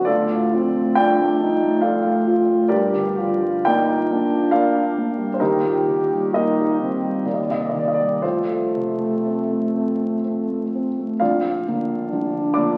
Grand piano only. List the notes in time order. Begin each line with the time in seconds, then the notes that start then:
0.05 D2 F4 A4 D5
0.29 A2
0.53 F3
0.76 A3
0.95 F3 D5 G5
1.20 A3
1.41 F3
1.62 A3
1.81 F3 A4 D5 F5
2.06 A3
2.27 F3
2.49 A3
2.69 G2 G4 A#4 D5
2.93 D3
3.18 F3
3.42 G3
3.65 A#3 A#4 D5 G5
3.90 F4
4.12 A#3
4.34 F4
4.51 A#3 A#4 D5 F5
4.76 F4
4.98 A#3
5.18 G3
5.34 C5
5.40 D#2 D#4 G4 A#4
5.65 A#2
5.89 D#3
6.14 G3
6.34 A#3 G4 A#4 D#5
6.60 G3
6.81 D#3
7.03 G3
7.26 D#2 D5
7.34 D#5
7.43 D5
7.48 C3 D#5
7.60 D5
7.70 D#5
7.74 D#3
7.79 D5
7.88 D#5
7.94 D5
7.99 G3
8.22 F2 F4 A4 C5
8.50 F3
8.76 C3
9.00 A3
9.26 C4
9.52 A3
9.75 C4
10.01 A3
10.24 C4
10.50 A3
10.75 C4
10.99 A3
11.20 A#0 A#1 F4 D5 F5
11.67 D3 F3 A#3
12.12 A#0 A#1
12.54 D3 F3 A#3 D5 D6